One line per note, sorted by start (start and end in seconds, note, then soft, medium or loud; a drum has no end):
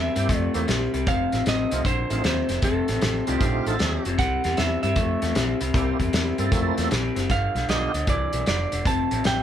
0.00 0.13 C3 medium
0.00 0.14 G3 medium
0.00 0.38 E5 medium
0.14 0.25 G2 medium
0.14 0.28 C3 medium
0.14 0.28 G3 medium
0.14 0.27 A#3 medium
0.14 0.28 C4 medium
0.14 0.28 E4 medium
0.14 0.28 G4 medium
0.14 closed hi-hat medium
0.29 0.47 F2 medium
0.29 0.52 C3 medium
0.29 0.53 A3 medium
0.29 kick loud
0.29 closed hi-hat medium
0.38 0.52 D5 medium
0.54 0.64 E2 medium
0.54 0.66 C3 medium
0.54 0.67 A3 medium
0.54 0.66 A#3 medium
0.54 0.67 C4 medium
0.54 0.67 E4 soft
0.54 0.67 G4 medium
0.54 closed hi-hat medium
0.67 0.86 A#1 medium
0.67 0.91 C3 medium
0.67 0.91 G3 medium
0.67 snare loud
0.67 closed hi-hat medium
0.94 1.03 C2 medium
0.94 1.06 C3 medium
0.94 1.06 G3 medium
0.94 closed hi-hat soft
1.07 1.25 F1 medium
1.07 1.30 F2 medium
1.07 1.30 C3 medium
1.07 1.44 F5 medium
1.07 kick loud
1.07 closed hi-hat medium
1.32 1.42 A1 medium
1.32 1.45 F2 medium
1.32 1.45 C3 medium
1.32 snare soft
1.32 closed hi-hat soft
1.46 1.64 A1 medium
1.46 1.69 F2 medium
1.46 1.69 C3 medium
1.46 1.84 D#5 medium
1.46 snare medium
1.46 closed hi-hat medium
1.71 1.81 C2 medium
1.71 1.84 F2 medium
1.71 1.84 C3 medium
1.71 1.83 A3 medium
1.71 1.84 C4 soft
1.71 1.84 D#4 medium
1.71 1.84 F4 medium
1.71 closed hi-hat medium
1.85 2.03 A#1 medium
1.85 2.08 F2 medium
1.85 2.08 D3 medium
1.85 2.24 C5 medium
1.85 kick medium
1.85 closed hi-hat medium
2.10 2.20 A1 medium
2.10 2.22 F2 medium
2.10 2.23 D3 medium
2.10 2.22 A3 medium
2.10 2.23 C4 medium
2.10 2.23 D#4 medium
2.10 2.23 F4 medium
2.10 closed hi-hat medium
2.24 2.42 D#2 medium
2.24 2.47 F2 medium
2.24 2.47 C3 medium
2.24 2.61 C5 medium
2.24 snare medium
2.24 closed hi-hat medium
2.49 2.59 F1 medium
2.49 2.62 F2 medium
2.49 2.62 C3 medium
2.49 snare soft
2.49 closed hi-hat medium
2.62 2.80 F1 medium
2.62 2.86 F2 medium
2.62 2.86 C3 medium
2.62 3.24 A4 medium
2.62 kick medium
2.62 closed hi-hat medium
2.88 2.98 A1 medium
2.88 3.01 F2 medium
2.88 3.01 C3 medium
2.88 snare soft
2.88 closed hi-hat medium
3.01 3.20 A1 medium
3.01 3.25 F2 medium
3.01 3.25 C3 medium
3.01 snare loud
3.01 closed hi-hat medium
3.26 3.37 C2 medium
3.26 3.40 F2 medium
3.26 3.40 C3 medium
3.26 3.77 A3 medium
3.26 3.77 C4 medium
3.26 3.36 D4 medium
3.26 3.77 D#4 medium
3.26 3.35 E4 medium
3.26 3.77 F4 medium
3.26 3.65 G4 medium
3.26 closed hi-hat medium
3.41 3.58 A#1 medium
3.41 3.64 F2 medium
3.41 3.64 D3 medium
3.41 kick medium
3.41 closed hi-hat medium
3.66 3.76 A1 medium
3.66 3.79 F2 medium
3.66 3.79 D3 medium
3.66 4.11 A4 medium
3.66 closed hi-hat medium
3.79 3.98 D#2 medium
3.79 4.03 F2 medium
3.79 4.03 C3 medium
3.79 snare loud
3.79 closed hi-hat medium
4.05 4.15 F1 medium
4.05 4.18 F2 medium
4.05 4.18 C3 medium
4.05 closed hi-hat medium
4.19 4.36 C2 medium
4.19 4.42 C3 medium
4.19 4.42 G3 medium
4.19 4.59 F#5 loud
4.19 kick medium
4.19 snare soft
4.19 closed hi-hat medium
4.44 4.54 E2 medium
4.44 4.56 C3 medium
4.44 4.57 G3 medium
4.44 snare soft
4.44 closed hi-hat medium
4.57 4.76 E2 medium
4.57 4.81 C3 medium
4.57 4.81 G3 medium
4.57 4.81 E5 medium
4.57 snare medium
4.57 closed hi-hat medium
4.83 4.93 G2 medium
4.83 4.95 C3 medium
4.83 4.96 G3 medium
4.83 6.87 E5 medium
4.83 closed hi-hat medium
4.96 5.14 F2 medium
4.96 5.20 C3 medium
4.96 5.20 A3 medium
4.96 kick medium
4.96 closed hi-hat medium
5.22 5.32 E2 medium
5.22 5.34 C3 medium
5.22 5.34 A3 medium
5.22 snare soft
5.22 closed hi-hat medium
5.35 5.53 A#1 medium
5.35 5.58 C3 medium
5.35 5.59 G3 medium
5.35 snare medium
5.35 closed hi-hat medium
5.61 5.70 C2 medium
5.61 5.73 C3 medium
5.61 5.73 G3 medium
5.61 closed hi-hat medium
5.74 5.92 C2 medium
5.74 5.97 C3 medium
5.74 5.97 G3 medium
5.74 5.97 A#3 medium
5.74 5.97 C4 medium
5.74 5.98 E4 soft
5.74 5.98 G4 medium
5.74 kick loud
5.74 snare soft
5.74 closed hi-hat medium
5.99 6.09 E2 medium
5.99 6.12 C3 medium
5.99 6.12 G3 medium
5.99 kick medium
5.99 closed hi-hat medium
6.13 6.31 E2 medium
6.13 6.36 C3 medium
6.13 6.36 G3 medium
6.13 snare loud
6.13 closed hi-hat medium
6.38 6.48 G2 medium
6.38 6.51 C3 medium
6.38 6.51 G3 medium
6.38 6.89 A#3 medium
6.38 6.89 C4 medium
6.38 6.89 E4 medium
6.38 6.89 A4 medium
6.38 closed hi-hat medium
6.52 6.70 F2 medium
6.52 6.75 C3 medium
6.52 6.75 A3 medium
6.52 kick loud
6.52 closed hi-hat medium
6.78 6.87 E2 medium
6.78 6.90 C3 medium
6.78 6.90 A3 medium
6.78 snare soft
6.78 closed hi-hat medium
6.91 7.09 A#1 medium
6.91 7.14 C3 medium
6.91 7.14 G3 medium
6.91 snare medium
6.91 closed hi-hat medium
7.16 7.30 F#1 medium
7.16 7.28 C3 medium
7.16 7.29 G3 medium
7.16 snare soft
7.16 closed hi-hat medium
7.30 7.47 G1 medium
7.30 7.53 G2 medium
7.30 7.53 D3 medium
7.30 7.70 F5 medium
7.30 kick medium
7.30 snare soft
7.30 closed hi-hat medium
7.55 7.65 B1 medium
7.55 7.67 G2 medium
7.55 7.68 D3 medium
7.55 snare soft
7.55 closed hi-hat soft
7.68 7.86 B1 medium
7.68 7.92 G2 medium
7.68 7.92 D3 medium
7.68 7.92 B3 medium
7.68 7.92 D4 medium
7.68 7.92 F4 medium
7.68 7.92 G4 medium
7.68 8.09 D#5 medium
7.68 snare medium
7.68 closed hi-hat medium
7.94 8.04 D2 medium
7.94 8.06 G2 medium
7.94 8.07 D3 medium
7.94 closed hi-hat medium
8.07 8.25 C2 medium
8.07 8.31 G2 medium
8.07 8.31 E3 medium
8.07 8.45 D5 medium
8.07 kick medium
8.07 closed hi-hat medium
8.33 8.43 B1 medium
8.33 8.45 G2 medium
8.33 8.46 E3 medium
8.33 closed hi-hat medium
8.46 8.64 F1 medium
8.46 8.69 G2 medium
8.46 8.70 D3 medium
8.46 8.88 D5 medium
8.46 snare medium
8.46 closed hi-hat medium
8.72 8.82 E1 medium
8.72 8.84 G2 medium
8.72 8.84 D3 medium
8.72 closed hi-hat medium
8.85 9.03 F1 medium
8.85 9.08 F2 medium
8.85 9.09 C3 medium
8.85 9.23 A5 loud
8.85 kick loud
8.85 closed hi-hat medium
9.11 9.21 A1 medium
9.11 9.23 F2 medium
9.11 9.23 C3 medium
9.11 closed hi-hat medium
9.24 9.43 A1 medium
9.24 9.43 F2 medium
9.24 9.43 C3 medium
9.24 9.43 G5 medium
9.24 snare loud
9.24 closed hi-hat medium